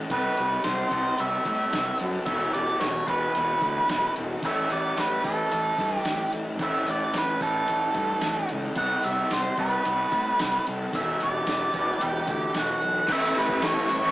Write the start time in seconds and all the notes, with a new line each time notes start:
Already playing: A2 E3 G3 A3 E4 A4
0.10 C2 C3 E3 G3 C4 E4 A4 B4, kick, open hi-hat
0.37 C2 G4, open hi-hat
0.64 C2 C3 G3 C4 C5, snare, open hi-hat
0.91 C2 C3 E3 G3 C4 E4 B4, kick, open hi-hat
1.18 C2 C3 G3 C4 E5, open hi-hat
1.45 A2 C4 A4, kick, open hi-hat
1.50 G3
1.73 C2 C3 G3 C4, snare, open hi-hat
2.00 F#2 A4, open hi-hat
2.26 E1 E2 B2 E3 G3 D4 E4 A4 E5, kick, open hi-hat
2.30 E3
2.53 E1 G4 D5, open hi-hat
2.80 E1 E2 B2 C#5, snare, open hi-hat
2.84 E3
3.07 E1 B2 E3 G3 D4 E4 B4, kick, open hi-hat
3.11 E2
3.35 E1 E2 B2 E3, open hi-hat
3.62 D2 B2 E3 A4, kick, open hi-hat
3.89 E1 E2 B2 E3, snare, open hi-hat
4.16 E1 A4, open hi-hat
4.43 A1 A2 E3 G3 A3 D4 E4 A4 E5, kick, open hi-hat, tambourine
4.70 A1 G4 D5, open hi-hat, tambourine
4.97 A1 A2 E3 A3 B4, snare, open hi-hat, tambourine
5.24 A1 A2 E3 G3 D4 E4 A4 B4, kick, open hi-hat, tambourine
5.51 A1 A2 E3 A3, open hi-hat
5.78 G2 E3 A3 A4, kick, open hi-hat, tambourine
5.97 G4
6.04 A1 A2 E3 A3, snare, open hi-hat, tambourine
6.33 A1 A4, open hi-hat
6.59 A1 A2 E3 G3 A3 D4 E4 A4, kick, open hi-hat, tambourine
6.64 E5
6.87 A1 G4, open hi-hat, tambourine
6.91 D5
7.14 A1 A2 E3 A3 B4, snare, open hi-hat, tambourine
7.41 A1 A2 E3 G3 D4 E4 A4 B4, kick, open hi-hat, tambourine
7.68 A1 A2 E3 A3, open hi-hat
7.95 G2 E3 A3 A4, kick, open hi-hat, tambourine
8.21 A1 A2 E3 A3, snare, open hi-hat, tambourine
8.49 C#2 A4, open hi-hat
8.76 C2 C3 E3 G3 C4 E4 A4 F#5, kick, open hi-hat, tambourine
9.03 C2 G4 E5, open hi-hat, tambourine
9.30 C2 C3 G3 C4 C5, snare, open hi-hat, tambourine
9.57 C2 C3 E3 G3 C4 E4 B4, kick, open hi-hat
9.85 C2 C3 G3 C4, open hi-hat
10.12 A2 G3 C4 A4, kick, open hi-hat, tambourine
10.39 C2 C3 G3 C4, snare, open hi-hat, tambourine
10.66 C2 A4, open hi-hat
10.92 E1 E2 B2 E3 G3 D4 E4 A4 E5, kick, open hi-hat, tambourine
11.20 E1 G4 D5, open hi-hat, tambourine
11.47 E1 E2 B2 E3, snare, open hi-hat, tambourine
11.74 E1 E2 B2 E3 G3 D4 E4 B4, kick, open hi-hat, tambourine
12.01 E1 E2 B2 E3 G4, open hi-hat, tambourine
12.28 D2 B2 E3 A4 G5, kick, open hi-hat, tambourine
12.54 E1 E2 B2 E3, snare, open hi-hat, tambourine
12.59 F#5
12.82 B1 A4, open hi-hat
13.08 A1 A2 E3 A3 B3 C#4 E4 A4 B4 E5 A5 C#6, kick, crash, ride, tambourine
13.12 E5
13.35 A1 A2 E3 A3 B3 C#4 E4 G4 B4, ride, tambourine
13.49 B3 C#4 E4, kick
13.61 A1 A2 E3 A3 B3 C#4 E4 C#5, snare, ride, tambourine
13.74 E3 A3 C#4 E4
13.79 B3
13.89 A1 B4, muted distorted electric guitar stroke, muted clean electric guitar stroke, ride, tambourine
14.02 E3 A3 B3 C#4 E4